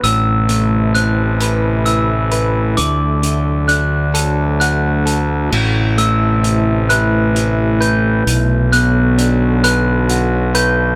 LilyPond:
<<
  \new Staff \with { instrumentName = "Glockenspiel" } { \time 6/8 \key a \dorian \tempo 4. = 44 e'''4 fis'''4 e'''4 | d'''4 fis'''4 fis'''4 | r8 e'''4 fis'''4 g'''8~ | g'''8 fis'''4 fis'''4 g'''8 | }
  \new Staff \with { instrumentName = "Clean electric guitar" } { \time 6/8 \key a \dorian a,8 a8 c'8 b'8 e'8 b'8 | d8 d8 d'8 a'8 fis'8 a'8 | a,8 a8 c'8 b'8 e'8 b'8 | b,8 b8 d'8 b'8 fis'8 b'8 | }
  \new Staff \with { instrumentName = "Ambient pad" } { \clef bass \time 6/8 \key a \dorian <c a e'>2. | <d fis fis'>2. | <c a e'>2. | <d fis fis'>2. | }
  \new Staff \with { instrumentName = "Fingered electric bass" } { \clef bass \time 6/8 \key a \dorian a,,2. | d,2. | a,,2. | b,,2. | }
  \new DrumStaff \with { instrumentName = "Drums" } \drummode { \time 6/8 hh8 hh8 hh8 hh8 hh8 hh8 | hh8 hh8 hh8 hh8 hh8 hh8 | cymc8 hh8 hh8 hh8 hh8 hh8 | hh8 hh8 hh8 hh8 hh8 hh8 | }
>>